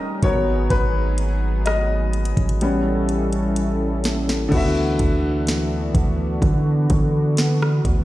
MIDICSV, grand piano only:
0, 0, Header, 1, 2, 480
1, 0, Start_track
1, 0, Tempo, 952381
1, 356, Time_signature, 4, 2, 24, 8
1, 4052, End_track
2, 0, Start_track
2, 0, Title_t, "Grand piano"
2, 0, Program_c, 0, 0
2, 0, Control_c, 0, 64, 127
2, 0, Note_on_c, 0, 55, 53
2, 0, Note_on_c, 0, 58, 51
2, 0, Note_on_c, 0, 61, 64
2, 0, Note_on_c, 0, 75, 97
2, 0, Note_on_c, 0, 79, 102
2, 98, Note_off_c, 0, 55, 0
2, 100, Note_off_c, 0, 58, 0
2, 101, Note_off_c, 0, 61, 0
2, 117, Note_on_c, 0, 73, 82
2, 119, Note_on_c, 0, 54, 54
2, 122, Control_c, 0, 64, 0
2, 122, Note_on_c, 0, 70, 53
2, 123, Note_off_c, 0, 79, 0
2, 124, Note_on_c, 0, 59, 62
2, 130, Note_off_c, 0, 75, 0
2, 225, Control_c, 0, 64, 127
2, 340, Note_off_c, 0, 73, 0
2, 354, Note_on_c, 0, 71, 91
2, 817, Note_off_c, 0, 54, 0
2, 819, Note_off_c, 0, 70, 0
2, 820, Note_off_c, 0, 59, 0
2, 835, Note_on_c, 0, 75, 77
2, 849, Note_off_c, 0, 71, 0
2, 1318, Note_on_c, 0, 55, 54
2, 1321, Note_on_c, 0, 59, 51
2, 1322, Control_c, 0, 64, 0
2, 1323, Note_on_c, 0, 61, 61
2, 1400, Control_c, 0, 64, 127
2, 1535, Note_off_c, 0, 75, 0
2, 2017, Note_off_c, 0, 55, 0
2, 2018, Note_off_c, 0, 59, 0
2, 2020, Note_off_c, 0, 61, 0
2, 2260, Note_on_c, 0, 50, 78
2, 2273, Note_on_c, 0, 59, 75
2, 2283, Control_c, 0, 64, 0
2, 2286, Note_on_c, 0, 66, 69
2, 2300, Note_on_c, 0, 76, 84
2, 2369, Control_c, 0, 64, 127
2, 4052, Note_off_c, 0, 50, 0
2, 4052, Note_off_c, 0, 59, 0
2, 4052, Note_off_c, 0, 66, 0
2, 4052, Note_off_c, 0, 76, 0
2, 4052, End_track
0, 0, End_of_file